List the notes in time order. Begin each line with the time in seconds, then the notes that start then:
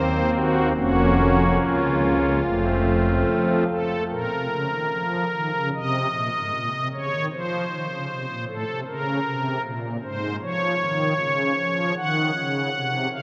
Already playing: D#2 A#3 C4 C5
0.33 F#4
0.75 F1 F2 A#3 C#4 F#4
1.60 C#2 F4
2.43 F1 F2 A3 C4
3.26 F3
3.68 A4
4.11 A#2 A#4
4.31 C3
4.50 C#3
4.70 D#3
4.90 F3
5.32 D#3
5.54 C#3
5.74 C3 D#5
6.13 A#2
6.34 G#2
6.52 A#2
6.72 C3
6.92 C#3 C#5
7.10 D#3
7.32 F3 C5
7.71 D#3
7.91 C#3
8.11 C3
8.29 A#2
8.47 A2 A4
8.67 C3
8.87 C#3 A#4
9.25 C3
9.64 A#2
10.03 G#2 C5
10.42 F3 C#5
10.80 D#3
11.18 C#3
11.58 F3
11.97 D#3 F#5
12.36 C#3
12.75 C3
13.13 C#3 F5